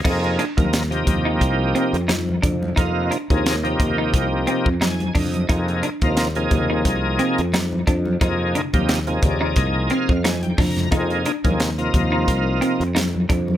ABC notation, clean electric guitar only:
X:1
M:4/4
L:1/16
Q:"Swing 16ths" 1/4=88
K:Fdor
V:1 name="Clean electric guitar"
E2 D2 z3 E2 z C2 E2 D2 | E2 D2 z3 E2 z C2 E2 D2 | E2 D2 z3 E2 z C2 E2 D2 | E2 D2 z3 E2 z C2 E2 D2 |
E2 D2 z3 E2 z C2 E2 D2 |]